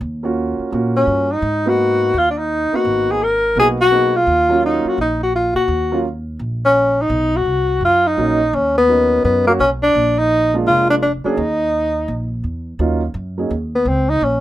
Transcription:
0.01 0.55 D#2 medium
0.23 0.70 A#3 medium
0.23 0.70 C#4 medium
0.23 0.70 F4 medium
0.23 0.70 F#4 medium
0.59 muted upright bass stroke soft
0.72 1.06 A#2 medium
0.72 1.26 A#3 medium
0.72 1.26 C#4 medium
0.72 1.26 F4 medium
0.72 1.27 F#4 medium
0.96 1.34 C#4 medium
1.07 1.41 G2 medium
1.32 1.70 D#4 medium
1.42 2.10 G#2 medium
1.66 2.12 A#3 medium
1.66 2.12 B3 medium
1.66 2.12 D#4 medium
1.66 2.13 F#4 medium
1.66 2.19 F#4 medium
2.14 2.68 D#2 medium
2.18 2.30 F4 medium
2.31 2.40 D4 medium
2.38 2.76 D#4 medium
2.72 3.18 A#3 medium
2.72 3.19 B3 medium
2.72 3.19 D#4 medium
2.72 3.19 F#4 medium
2.72 3.13 F#4 medium
2.72 muted upright bass stroke soft
2.85 3.52 G#1 medium
3.11 3.24 G#4 medium
3.23 3.57 A#4 medium
3.55 4.23 B1 medium
3.55 3.76 A#3 medium
3.55 3.77 B3 medium
3.55 3.77 D#4 medium
3.55 3.77 F#4 medium
3.55 3.68 G#4 medium
3.81 4.17 F#4 loud
3.91 4.11 A#3 medium
3.91 4.12 B3 medium
3.91 4.12 D#4 medium
3.91 4.12 G#4 medium
4.16 4.63 F4 medium
4.27 4.81 D#2 medium
4.49 4.95 F#3 medium
4.49 4.95 A#3 medium
4.49 4.96 C#4 medium
4.49 4.96 F4 medium
4.66 4.90 D#4 medium
4.85 5.00 F#4 medium
4.85 muted upright bass stroke soft
4.98 5.52 A#1 medium
4.98 5.20 D#4 medium
5.23 5.34 F#4 medium
5.35 5.55 F4 medium
5.55 5.68 A#2 medium
5.55 6.01 F#4 medium
5.68 6.36 D#2 medium
5.92 6.03 F#3 medium
5.92 6.03 A#3 medium
5.92 6.04 C#4 medium
5.92 6.04 F4 medium
6.39 7.07 A#1 medium
6.65 7.03 C#4 loud
7.01 7.38 D#4 medium
7.10 7.43 B1 medium
7.36 7.83 F#4 medium
7.46 7.79 C2 medium
7.81 8.14 F#2 medium
7.81 8.08 F4 medium
8.07 8.56 D#4 loud
8.17 8.50 A#1 medium
8.17 8.38 F#3 medium
8.17 8.38 A#3 medium
8.17 8.38 C#4 medium
8.17 8.39 D#4 medium
8.53 9.21 D#2 medium
8.53 8.76 C#4 medium
8.77 9.22 B3 medium
8.88 9.42 F#3 soft
8.88 9.42 C#4 soft
8.88 9.42 D#4 medium
8.88 9.42 A#4 soft
9.25 9.57 F#2 medium
9.25 9.45 B3 medium
9.47 9.58 F#3 medium
9.47 9.58 A#3 medium
9.47 9.53 A#3 medium
9.47 9.59 C#4 medium
9.47 9.59 F#4 medium
9.59 9.92 B1 medium
9.59 9.70 C#4 medium
9.83 10.20 D4 loud
9.95 10.63 A#1 medium
10.18 10.54 D#4 loud
10.54 11.00 G#3 medium
10.54 11.00 A#3 medium
10.54 11.00 D4 medium
10.54 11.00 F4 medium
10.66 11.20 F1 medium
10.66 10.88 F4 medium
10.90 10.96 D4 medium
11.02 11.12 D4 medium
11.24 11.36 F#3 medium
11.24 11.37 A#3 medium
11.24 11.37 C#4 medium
11.24 12.41 D#4 medium
11.24 11.37 G#4 medium
11.24 muted upright bass stroke soft
11.37 12.05 D#2 medium
12.08 12.41 A#1 medium
12.44 12.77 E2 medium
12.79 13.13 D#2 medium
12.79 13.00 F#3 medium
12.79 13.00 A#3 medium
12.79 13.00 C#4 medium
12.79 13.00 D#4 soft
12.79 13.00 F4 medium
13.14 13.49 F#2 medium
13.38 13.50 F#3 medium
13.38 13.50 A#3 soft
13.38 13.50 C#4 medium
13.38 13.50 D#4 medium
13.38 13.50 G#4 medium
13.50 13.85 D#2 medium
13.75 13.90 B3 medium
13.85 14.20 C#2 medium
13.85 14.11 C4 medium
14.09 14.26 D#4 loud
14.21 14.40 A#1 medium
14.21 14.40 C#4 medium

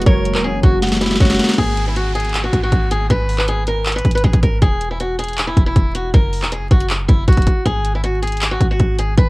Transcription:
0.00 1.55 F#4 medium
0.00 closed hi-hat medium
0.06 0.36 F#1 loud
0.06 1.57 C#3 medium
0.06 1.01 F#3 loud
0.06 1.57 A#3 medium
0.06 0.33 A#4 loud
0.06 0.78 C#5 loud
0.06 kick loud
0.06 closed hi-hat medium
0.25 1.20 A#3 medium
0.25 closed hi-hat medium
0.35 0.50 E1 loud
0.35 0.42 A#4 medium
0.35 clap medium
0.44 1.19 C#4 medium
0.44 0.59 G#4 medium
0.49 0.63 F#1 loud
0.63 1.18 F#1 loud
0.63 1.00 F#4 loud
0.63 0.78 F#4 medium
0.63 kick loud
0.63 closed hi-hat medium
0.82 1.58 F#5 medium
0.82 snare medium
0.82 closed hi-hat soft
0.87 snare medium
0.87 closed hi-hat medium
0.92 snare medium
0.92 closed hi-hat medium
0.97 snare medium
1.01 1.15 E4 medium
1.01 1.58 F#4 medium
1.01 snare medium
1.01 closed hi-hat medium
1.06 snare medium
1.11 snare medium
1.16 snare medium
1.20 1.38 F#1 loud
1.20 1.58 C#4 loud
1.20 1.56 F#4 medium
1.20 kick loud
1.20 snare medium
1.20 closed hi-hat medium
1.25 snare medium
1.30 snare loud
1.30 closed hi-hat soft
1.34 snare medium
1.39 1.58 A#3 medium
1.39 snare loud
1.39 closed hi-hat medium
1.39 open hi-hat medium
1.44 snare medium
1.44 closed hi-hat medium
1.49 snare loud
1.49 closed hi-hat medium
1.54 snare loud
1.54 closed hi-hat soft
1.58 2.49 G#1 loud
1.58 1.85 G#4 loud
1.58 kick loud
1.58 closed hi-hat medium
1.58 downlifter medium
1.77 closed hi-hat medium
1.87 1.94 E4 medium
1.96 2.11 F#4 medium
1.96 closed hi-hat medium
2.15 2.42 G#4 medium
2.15 closed hi-hat medium
2.20 closed hi-hat medium
2.25 closed hi-hat soft
2.29 closed hi-hat soft
2.34 clap loud
2.34 closed hi-hat medium
2.44 2.58 F#4 medium
2.53 2.71 G#1 loud
2.53 kick medium
2.53 closed hi-hat medium
2.63 2.90 F#4 medium
2.72 3.09 G#1 loud
2.72 kick loud
2.72 closed hi-hat medium
2.91 3.05 G#4 medium
2.91 closed hi-hat medium
3.10 4.01 G#1 loud
3.10 3.37 B4 loud
3.10 kick loud
3.10 closed hi-hat medium
3.29 open hi-hat medium
3.38 3.46 B4 medium
3.38 clap medium
3.48 3.63 G#4 loud
3.48 closed hi-hat medium
3.67 3.94 A#4 medium
3.67 closed hi-hat medium
3.86 clap loud
3.86 closed hi-hat soft
3.92 4.10 B4 medium
3.92 closed hi-hat medium
3.99 closed hi-hat medium
4.05 4.23 G#1 loud
4.05 kick medium
4.05 closed hi-hat soft
4.11 4.22 B4 medium
4.11 closed hi-hat medium
4.18 closed hi-hat medium
4.24 4.33 G#1 loud
4.24 4.39 G#4 medium
4.24 kick loud
4.24 closed hi-hat soft
4.33 4.42 G#1 loud
4.33 kick medium
4.33 closed hi-hat medium
4.43 4.61 G#1 loud
4.43 4.57 A#4 medium
4.43 kick loud
4.43 closed hi-hat medium
4.62 5.53 E1 loud
4.62 4.89 G#4 loud
4.62 kick loud
4.62 closed hi-hat medium
4.81 closed hi-hat medium
4.91 4.98 E4 medium
5.00 5.14 F#4 medium
5.00 closed hi-hat medium
5.19 5.46 G#4 medium
5.19 closed hi-hat medium
5.24 closed hi-hat medium
5.28 closed hi-hat soft
5.33 closed hi-hat soft
5.38 clap loud
5.38 closed hi-hat medium
5.47 5.62 E4 medium
5.57 5.75 E1 loud
5.57 kick medium
5.57 closed hi-hat medium
5.66 5.93 E4 medium
5.76 6.12 E1 loud
5.76 kick loud
5.76 closed hi-hat medium
5.95 6.09 F#4 medium
5.95 closed hi-hat medium
6.14 6.44 F#1 loud
6.14 6.41 A#4 loud
6.14 kick loud
6.14 closed hi-hat medium
6.33 open hi-hat medium
6.42 6.58 E1 loud
6.42 6.50 A#4 medium
6.42 clap medium
6.52 6.66 G#4 medium
6.52 closed hi-hat medium
6.57 6.70 F#1 medium
6.71 7.07 F#1 loud
6.71 6.85 F#4 medium
6.71 kick medium
6.71 closed hi-hat medium
6.80 closed hi-hat medium
6.90 clap loud
6.90 closed hi-hat medium
7.08 7.27 F#1 loud
7.08 7.23 E4 medium
7.08 kick medium
7.08 closed hi-hat medium
7.28 7.46 F#1 loud
7.28 7.64 F#4 medium
7.28 kick loud
7.28 closed hi-hat medium
7.33 closed hi-hat medium
7.37 kick medium
7.37 closed hi-hat medium
7.42 closed hi-hat medium
7.47 kick medium
7.47 closed hi-hat medium
7.65 8.57 G#1 loud
7.65 7.92 G#4 loud
7.65 kick loud
7.65 closed hi-hat medium
7.85 closed hi-hat medium
7.95 8.02 E4 medium
8.04 8.18 F#4 medium
8.04 closed hi-hat medium
8.22 8.49 G#4 medium
8.22 closed hi-hat medium
8.27 closed hi-hat medium
8.32 closed hi-hat soft
8.37 closed hi-hat soft
8.42 clap loud
8.42 closed hi-hat medium
8.51 8.66 F#4 medium
8.61 8.79 G#1 loud
8.61 kick medium
8.61 closed hi-hat medium
8.71 8.97 F#4 medium
8.80 9.16 G#1 loud
8.80 kick loud
8.80 closed hi-hat medium
8.99 9.13 G#4 medium
8.99 closed hi-hat medium
9.18 9.29 G#1 loud
9.18 9.29 B4 loud
9.18 kick loud
9.18 closed hi-hat medium

